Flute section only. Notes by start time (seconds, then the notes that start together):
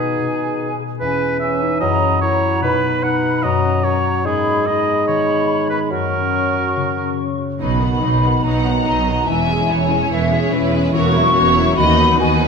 Already playing: G#5
0.99 G#5
1.40 G#5
1.80 A#5
2.21 A#5
2.61 B5
3.02 B5
3.44 A#5
3.84 A#5
4.25 B5
4.65 B5
5.92 C#6
7.60 B5
8.44 A#5
9.27 G#5
10.11 E5
10.93 C#6
11.77 B5
12.19 G#5